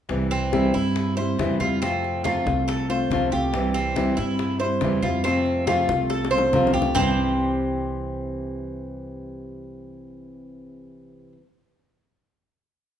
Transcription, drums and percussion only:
0.09 high bongo medium
0.09 high conga soft
0.31 high bongo soft
0.31 high conga soft
0.53 high bongo medium
0.53 high conga medium
0.74 high bongo soft
0.74 high conga soft
0.96 high bongo medium
0.96 high conga soft
1.18 high bongo soft
1.18 high conga soft
1.39 high bongo medium
1.39 low bongo medium
1.39 high conga medium
1.61 high conga medium
1.82 high bongo medium
1.82 high conga soft
2.04 high bongo soft
2.04 high conga soft
2.25 high bongo medium
2.25 high conga medium
2.47 high bongo soft
2.47 high conga medium
2.68 high bongo medium
2.68 high conga soft
2.90 high bongo soft
2.90 high conga soft
3.11 high bongo medium
3.11 low bongo medium
3.11 high conga medium
3.32 high conga medium
3.53 high bongo medium
3.53 high conga soft
3.75 high bongo soft
3.75 high conga soft
3.96 high bongo medium
3.96 high conga medium
4.18 high bongo soft
4.18 high conga soft
4.39 high bongo medium
4.39 high conga soft
4.60 high bongo soft
4.60 high conga soft
4.81 high bongo medium
4.81 low bongo medium
4.81 high conga medium
5.03 high conga medium
5.25 high bongo medium
5.25 high conga soft
5.46 high bongo soft
5.46 high conga soft
5.67 high bongo medium
5.67 high conga loud
5.89 high bongo soft
5.89 high conga loud
6.10 high bongo medium
6.10 high conga soft
6.25 high bongo medium
6.33 high conga soft
6.38 low bongo medium
6.53 low bongo medium
6.53 high conga medium
6.67 low bongo medium
6.75 high conga medium
6.82 low bongo medium
6.96 low bongo loud
6.96 low conga loud

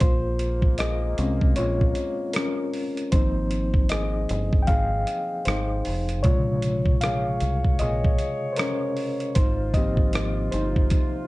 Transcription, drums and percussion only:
0.00 kick loud
0.00 closed hi-hat medium
0.39 closed hi-hat medium
0.62 kick medium
0.78 cross-stick loud
0.78 closed hi-hat medium
1.18 closed hi-hat medium
1.41 kick medium
1.56 closed hi-hat medium
1.81 kick medium
1.95 closed hi-hat medium
2.33 cross-stick loud
2.33 closed hi-hat medium
2.74 open hi-hat soft
2.97 closed hi-hat soft
3.12 kick loud
3.12 closed hi-hat medium
3.51 closed hi-hat medium
3.74 kick medium
3.89 cross-stick loud
3.89 closed hi-hat medium
4.29 closed hi-hat medium
4.53 kick medium
4.67 kick medium
4.67 closed hi-hat medium
5.07 closed hi-hat medium
5.45 cross-stick loud
5.45 closed hi-hat medium
5.85 open hi-hat soft
6.09 closed hi-hat soft
6.24 kick loud
6.24 closed hi-hat medium
6.62 closed hi-hat medium
6.86 kick medium
7.01 cross-stick loud
7.01 closed hi-hat medium
7.40 closed hi-hat medium
7.65 kick medium
7.79 closed hi-hat medium
8.04 kick medium
8.18 closed hi-hat medium
8.56 cross-stick loud
8.56 closed hi-hat medium
8.97 open hi-hat soft
9.20 closed hi-hat soft
9.35 kick loud
9.35 closed hi-hat medium
9.74 kick medium
9.74 closed hi-hat medium
9.97 kick medium
10.13 cross-stick loud
10.13 closed hi-hat medium
10.52 closed hi-hat medium
10.76 kick medium
10.90 kick medium
10.90 closed hi-hat medium

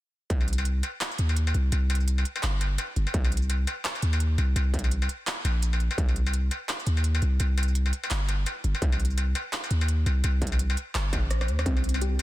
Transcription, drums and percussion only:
0.30 kick loud
0.30 closed hi-hat medium
0.41 struck metal medium
0.48 closed hi-hat medium
0.53 closed hi-hat medium
0.58 struck metal medium
0.58 shaker soft
0.65 closed hi-hat medium
0.83 closed hi-hat medium
0.83 struck metal medium
0.83 shaker soft
1.01 clap loud
1.01 closed hi-hat medium
1.01 struck metal medium
1.11 shaker medium
1.18 closed hi-hat medium
1.29 struck metal medium
1.29 shaker soft
1.36 closed hi-hat medium
1.47 struck metal medium
1.54 closed hi-hat soft
1.72 closed hi-hat medium
1.72 struck metal medium
1.90 closed hi-hat medium
1.90 struck metal medium
1.95 closed hi-hat medium
2.00 shaker soft
2.08 closed hi-hat medium
2.18 struck metal medium
2.25 closed hi-hat medium
2.36 struck metal medium
2.43 clap loud
2.43 closed hi-hat medium
2.61 closed hi-hat medium
2.61 struck metal medium
2.78 closed hi-hat medium
2.78 struck metal medium
2.78 shaker medium
2.96 closed hi-hat soft
3.07 struck metal medium
3.14 kick loud
3.14 closed hi-hat medium
3.25 struck metal medium
3.32 closed hi-hat medium
3.37 closed hi-hat medium
3.42 shaker soft
3.50 closed hi-hat medium
3.50 struck metal medium
3.67 closed hi-hat medium
3.67 struck metal medium
3.67 shaker soft
3.85 clap loud
3.85 closed hi-hat medium
3.95 struck metal medium
3.95 shaker medium
4.02 closed hi-hat medium
4.13 struck metal medium
4.13 shaker soft
4.20 closed hi-hat medium
4.38 closed hi-hat soft
4.38 struck metal soft
4.56 closed hi-hat medium
4.56 struck metal medium
4.74 kick medium
4.74 closed hi-hat soft
4.79 closed hi-hat medium
4.84 struck metal medium
4.84 shaker soft
4.91 closed hi-hat medium
5.02 struck metal medium
5.09 closed hi-hat medium
5.09 shaker soft
5.27 clap loud
5.27 closed hi-hat medium
5.27 struck metal medium
5.45 closed hi-hat medium
5.45 struck metal medium
5.62 closed hi-hat medium
5.62 shaker medium
5.73 struck metal medium
5.80 closed hi-hat soft
5.91 struck metal medium
5.98 kick loud
5.98 closed hi-hat medium
6.09 struck metal soft
6.16 closed hi-hat soft
6.27 struck metal medium
6.27 shaker soft
6.33 closed hi-hat medium
6.51 closed hi-hat medium
6.51 struck metal medium
6.51 shaker soft
6.69 clap loud
6.69 closed hi-hat medium
6.69 struck metal medium
6.80 shaker medium
6.87 closed hi-hat medium
6.97 struck metal soft
6.97 shaker soft
7.04 closed hi-hat medium
7.15 struck metal medium
7.22 closed hi-hat soft
7.40 closed hi-hat medium
7.40 struck metal medium
7.58 closed hi-hat soft
7.58 struck metal medium
7.63 closed hi-hat medium
7.68 shaker soft
7.75 closed hi-hat medium
7.86 struck metal soft
7.93 closed hi-hat medium
8.04 struck metal medium
8.11 clap loud
8.11 closed hi-hat medium
8.29 closed hi-hat medium
8.29 struck metal medium
8.46 closed hi-hat medium
8.46 struck metal medium
8.46 shaker medium
8.64 closed hi-hat soft
8.75 struck metal medium
8.82 kick loud
8.82 closed hi-hat medium
8.92 struck metal medium
9.00 closed hi-hat soft
9.05 closed hi-hat medium
9.10 shaker soft
9.18 closed hi-hat medium
9.18 struck metal medium
9.35 closed hi-hat medium
9.35 struck metal medium
9.35 shaker soft
9.53 clap loud
9.53 closed hi-hat medium
9.64 struck metal medium
9.64 shaker medium
9.71 closed hi-hat medium
9.81 struck metal medium
9.81 shaker soft
9.88 closed hi-hat medium
10.06 closed hi-hat soft
10.06 struck metal medium
10.24 closed hi-hat medium
10.24 struck metal medium
10.42 kick medium
10.42 closed hi-hat medium
10.47 closed hi-hat medium
10.52 struck metal medium
10.52 shaker soft
10.59 closed hi-hat medium
10.70 struck metal medium
10.77 closed hi-hat medium
10.77 shaker soft
10.95 clap loud
10.95 closed hi-hat medium
10.95 struck metal medium
11.13 kick medium
11.13 closed hi-hat medium
11.13 struck metal medium
11.31 cross-stick medium
11.31 closed hi-hat medium
11.31 shaker medium
11.41 cross-stick medium
11.41 struck metal medium
11.48 closed hi-hat soft
11.59 cross-stick medium
11.59 struck metal medium
11.66 kick loud
11.66 closed hi-hat medium
11.77 struck metal medium
11.84 closed hi-hat medium
11.89 closed hi-hat medium
11.94 struck metal medium
11.94 shaker soft
12.01 closed hi-hat medium

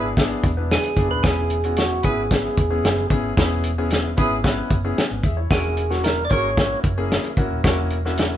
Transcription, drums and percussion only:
0.17 kick medium
0.17 snare medium
0.17 closed hi-hat medium
0.44 kick medium
0.44 closed hi-hat medium
0.71 snare loud
0.71 closed hi-hat medium
0.83 closed hi-hat soft
0.96 kick medium
0.96 closed hi-hat medium
1.23 kick loud
1.23 snare loud
1.23 closed hi-hat medium
1.50 closed hi-hat medium
1.64 closed hi-hat soft
1.76 snare medium
1.76 closed hi-hat medium
2.03 kick medium
2.03 closed hi-hat medium
2.31 kick medium
2.31 snare loud
2.31 closed hi-hat medium
2.58 kick medium
2.58 closed hi-hat medium
2.85 snare loud
2.85 closed hi-hat medium
3.10 kick medium
3.10 closed hi-hat medium
3.37 kick medium
3.37 snare loud
3.37 closed hi-hat medium
3.64 closed hi-hat medium
3.90 snare medium
3.90 closed hi-hat medium
4.17 kick medium
4.17 closed hi-hat medium
4.44 kick medium
4.44 snare medium
4.44 closed hi-hat medium
4.70 kick medium
4.70 closed hi-hat medium
4.98 snare loud
4.98 closed hi-hat medium
5.23 kick medium
5.23 closed hi-hat medium
5.50 kick loud
5.50 snare loud
5.50 closed hi-hat medium
5.77 closed hi-hat medium
5.91 snare soft
5.91 closed hi-hat soft
6.04 snare medium
6.04 closed hi-hat medium
6.30 kick medium
6.30 closed hi-hat medium
6.57 kick medium
6.57 snare medium
6.57 closed hi-hat medium
6.84 kick medium
6.84 closed hi-hat medium
7.11 snare loud
7.11 closed hi-hat medium
7.24 closed hi-hat soft
7.37 kick medium
7.37 closed hi-hat medium
7.64 kick medium
7.64 snare loud
7.64 closed hi-hat medium
7.90 closed hi-hat medium
8.05 snare soft
8.17 snare loud
8.17 closed hi-hat medium

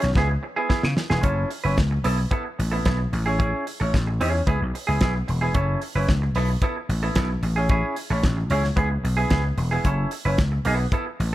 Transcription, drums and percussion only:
0.02 snare soft
0.02 closed hi-hat soft
0.15 kick loud
0.15 snare medium
0.70 kick loud
0.70 snare medium
0.83 snare medium
0.97 snare loud
1.10 snare medium
1.23 kick loud
1.23 closed hi-hat medium
1.51 open hi-hat medium
1.78 kick loud
1.78 snare loud
1.78 closed hi-hat soft
2.04 open hi-hat medium
2.31 kick loud
2.31 closed hi-hat medium
2.60 open hi-hat medium
2.85 kick loud
2.85 snare loud
2.85 closed hi-hat medium
3.13 open hi-hat medium
3.40 kick loud
3.40 closed hi-hat medium
3.67 open hi-hat medium
3.94 kick loud
3.94 snare medium
3.94 closed hi-hat medium
4.21 open hi-hat medium
4.47 kick loud
4.47 closed hi-hat medium
4.75 open hi-hat medium
5.01 kick loud
5.01 snare loud
5.01 closed hi-hat medium
5.28 open hi-hat medium
5.54 kick loud
5.54 closed hi-hat medium
5.82 open hi-hat medium
6.08 kick loud
6.08 snare medium
6.08 closed hi-hat soft
6.35 open hi-hat medium
6.62 kick loud
6.62 closed hi-hat medium
6.90 open hi-hat medium
7.15 kick loud
7.15 snare loud
7.15 closed hi-hat medium
7.43 open hi-hat medium
7.69 kick loud
7.69 closed hi-hat medium
7.96 open hi-hat medium
8.23 kick loud
8.23 snare loud
8.23 closed hi-hat medium
8.50 open hi-hat medium
8.64 snare soft
8.77 kick loud
8.77 closed hi-hat medium
9.05 open hi-hat medium
9.30 kick loud
9.30 snare loud
9.30 closed hi-hat medium
9.58 open hi-hat medium
9.85 kick loud
9.85 closed hi-hat medium
10.11 open hi-hat medium
10.38 kick loud
10.38 snare medium
10.38 closed hi-hat medium
10.65 open hi-hat medium
10.92 kick medium
10.92 closed hi-hat medium
11.20 open hi-hat medium

